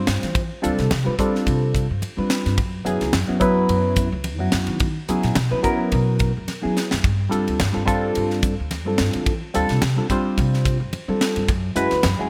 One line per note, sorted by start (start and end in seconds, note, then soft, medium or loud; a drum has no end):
0.00 0.40 G3 medium
0.00 0.40 C4 medium
0.00 0.40 D4 medium
0.00 0.41 F4 medium
0.00 0.41 C5 medium
0.07 0.21 G2 medium
0.07 snare loud
0.07 hi-hat pedal medium
0.07 ride medium
0.23 0.47 E3 medium
0.23 snare soft
0.23 ride medium
0.35 kick loud
0.35 ride medium
0.35 muted conga soft
0.62 0.77 D2 medium
0.62 0.90 G3 loud
0.62 0.91 C4 medium
0.62 0.91 D4 medium
0.62 0.91 F4 medium
0.62 0.91 A4 loud
0.62 hi-hat pedal medium
0.62 ride medium
0.78 0.90 C3 medium
0.78 snare soft
0.78 ride medium
0.91 1.04 C3 loud
0.91 snare loud
0.91 ride medium
0.91 muted conga soft
0.91 high conga loud
0.91 low conga medium
1.04 1.14 G3 medium
1.04 1.43 G3 medium
1.04 1.14 C4 medium
1.04 1.14 D4 medium
1.04 1.14 F4 medium
1.04 1.14 B4 medium
1.19 1.85 G3 loud
1.19 1.85 C4 loud
1.19 1.86 D4 loud
1.19 1.86 F4 medium
1.19 1.86 A4 loud
1.19 kick medium
1.19 hi-hat pedal medium
1.19 ride medium
1.35 snare soft
1.47 1.85 C3 medium
1.47 kick medium
1.47 ride medium
1.47 muted conga soft
1.47 high conga medium
1.75 kick medium
1.75 hi-hat pedal medium
1.75 ride medium
1.75 muted conga soft
1.91 2.01 G2 medium
2.02 ride medium
2.02 high conga medium
2.17 2.58 G3 medium
2.17 2.29 G3 medium
2.17 2.58 C4 medium
2.17 2.58 D4 medium
2.17 2.58 F4 medium
2.17 2.59 B4 medium
2.30 snare loud
2.30 hi-hat pedal medium
2.30 ride medium
2.46 2.57 G2 medium
2.46 snare soft
2.46 ride medium
2.58 2.83 F#2 loud
2.58 kick loud
2.58 ride medium
2.85 2.99 F#2 medium
2.85 3.13 F#3 loud
2.85 3.14 B3 medium
2.85 3.14 C#4 medium
2.85 3.14 E4 medium
2.85 3.14 G#4 loud
2.85 hi-hat pedal medium
2.85 ride medium
3.01 3.13 C#2 medium
3.01 snare soft
3.01 ride medium
3.13 3.27 F#2 medium
3.13 snare loud
3.13 ride medium
3.13 muted conga soft
3.13 high conga medium
3.28 3.65 F#2 medium
3.28 3.37 F#3 medium
3.28 3.37 B3 medium
3.28 3.37 C#4 medium
3.28 3.37 E4 medium
3.28 3.38 F#4 medium
3.40 4.07 F#3 loud
3.40 4.08 B3 loud
3.40 4.08 C#4 medium
3.40 4.08 E4 loud
3.40 4.08 B4 loud
3.40 kick medium
3.40 hi-hat pedal medium
3.40 ride medium
3.69 4.07 F#2 loud
3.69 ride medium
3.69 muted conga soft
3.96 kick medium
3.96 hi-hat pedal medium
3.96 ride medium
3.96 muted conga soft
3.96 high conga medium
4.12 4.39 C#2 medium
4.24 ride medium
4.24 high conga medium
4.38 4.51 F#2 medium
4.38 4.86 F#3 medium
4.38 4.86 B3 medium
4.38 4.86 C#4 medium
4.38 4.87 E4 medium
4.38 4.87 F#4 medium
4.52 4.66 F#2 medium
4.52 snare loud
4.52 hi-hat pedal medium
4.52 ride medium
4.67 4.93 D#3 medium
4.67 ride medium
4.80 kick loud
4.80 ride medium
4.80 muted conga soft
5.08 5.22 C#2 medium
5.08 5.37 F#3 loud
5.08 5.37 B3 medium
5.08 5.37 C#4 medium
5.08 5.37 E4 medium
5.08 5.37 G#4 loud
5.08 hi-hat pedal medium
5.08 ride medium
5.23 5.35 A#2 medium
5.23 snare soft
5.23 ride medium
5.35 5.50 B2 medium
5.35 snare loud
5.35 ride medium
5.35 muted conga soft
5.35 high conga loud
5.35 low conga medium
5.50 5.60 F#3 medium
5.50 5.88 F#3 medium
5.50 5.60 B3 medium
5.50 5.60 C#4 medium
5.50 5.60 E4 medium
5.50 5.60 B4 loud
5.63 6.30 F#3 loud
5.63 6.31 B3 loud
5.63 6.31 C#4 medium
5.63 6.31 E4 medium
5.63 6.31 A#4 loud
5.63 kick medium
5.63 hi-hat pedal medium
5.63 ride medium
5.92 6.30 B2 loud
5.92 kick medium
5.92 ride medium
5.92 muted conga soft
5.92 high conga medium
6.19 kick medium
6.19 hi-hat pedal medium
6.19 ride medium
6.37 6.47 F#2 medium
6.48 snare soft
6.48 ride medium
6.48 high conga medium
6.62 7.03 F#3 medium
6.62 6.76 F#3 medium
6.62 7.03 B3 medium
6.62 7.03 C#4 medium
6.62 7.04 E4 medium
6.62 7.04 G#4 medium
6.77 snare medium
6.77 hi-hat pedal medium
6.91 7.03 F#2 medium
6.91 snare medium
7.04 7.29 G2 loud
7.04 kick loud
7.04 ride medium
7.04 muted conga soft
7.29 7.45 G2 medium
7.29 7.59 G3 loud
7.29 7.59 C4 medium
7.29 7.59 D4 medium
7.29 7.59 F4 medium
7.29 7.59 A4 loud
7.29 hi-hat pedal medium
7.29 ride medium
7.48 7.59 D2 medium
7.48 ride medium
7.60 7.74 G2 medium
7.60 snare loud
7.60 ride medium
7.60 muted conga soft
7.60 high conga medium
7.72 8.12 G2 medium
7.72 7.82 G3 medium
7.72 7.82 C4 medium
7.72 7.83 D4 medium
7.72 7.83 F4 medium
7.72 7.83 A4 medium
7.86 8.53 G3 loud
7.86 8.53 C4 medium
7.86 8.53 D4 medium
7.86 8.53 F4 medium
7.86 8.54 A4 loud
7.86 kick medium
7.86 hi-hat pedal medium
7.86 ride medium
8.15 8.54 G2 medium
8.15 ride medium
8.15 muted conga soft
8.30 snare soft
8.43 kick medium
8.43 hi-hat pedal medium
8.43 ride medium
8.43 muted conga soft
8.43 high conga medium
8.60 8.87 D2 medium
8.71 snare soft
8.71 ride medium
8.71 high conga medium
8.85 8.98 G2 medium
8.85 9.32 G3 medium
8.85 9.32 C4 medium
8.85 9.32 D4 medium
8.85 9.32 F4 medium
8.85 9.33 A4 medium
8.98 9.12 G2 medium
8.98 snare loud
8.98 hi-hat pedal medium
8.98 ride medium
9.13 9.39 E3 medium
9.13 ride medium
9.26 kick medium
9.26 ride medium
9.26 muted conga soft
9.54 9.68 D2 medium
9.54 9.82 G3 loud
9.54 9.82 C4 medium
9.54 9.83 D4 medium
9.54 9.83 F4 loud
9.54 9.83 A4 loud
9.54 hi-hat pedal medium
9.54 ride medium
9.69 9.81 C3 medium
9.69 snare soft
9.69 ride medium
9.82 9.95 C3 medium
9.82 snare loud
9.82 ride medium
9.82 muted conga soft
9.82 high conga loud
9.82 low conga medium
9.96 10.05 G3 medium
9.96 10.34 G3 medium
9.96 10.06 C4 medium
9.96 10.06 D4 medium
9.96 10.06 F4 medium
9.96 10.06 A4 loud
10.10 10.76 G3 loud
10.10 10.76 C4 loud
10.10 10.77 D4 medium
10.10 10.77 F4 medium
10.10 10.77 C5 loud
10.10 kick medium
10.10 hi-hat pedal medium
10.10 ride medium
10.38 10.75 C3 loud
10.38 kick medium
10.38 ride medium
10.38 muted conga soft
10.38 high conga medium
10.54 snare soft
10.65 kick medium
10.65 hi-hat pedal medium
10.65 ride medium
10.65 muted conga soft
10.80 10.91 G2 medium
10.93 ride medium
10.93 high conga medium
11.08 11.48 G3 medium
11.08 11.19 G3 medium
11.08 11.48 C4 medium
11.08 11.48 D4 medium
11.08 11.49 F4 medium
11.08 11.49 A4 medium
11.21 snare loud
11.21 hi-hat pedal medium
11.21 ride medium
11.36 11.47 G2 medium
11.36 ride medium
11.48 11.73 F#2 loud
11.48 kick medium
11.48 ride medium
11.76 11.89 F#2 medium
11.76 12.04 G#3 loud
11.76 12.04 C#4 medium
11.76 12.04 E4 medium
11.76 12.04 F#4 medium
11.76 12.04 B4 loud
11.76 hi-hat pedal medium
11.76 ride medium
11.91 12.03 C#2 medium
11.91 snare soft
11.91 ride medium
12.03 12.17 F#2 loud
12.03 snare loud
12.03 ride medium
12.03 muted conga soft
12.03 high conga medium
12.19 12.29 F#2 medium
12.19 12.27 G#3 medium
12.19 12.27 C#4 medium
12.19 12.27 E4 medium
12.19 12.28 F#4 medium
12.19 12.28 G#4 medium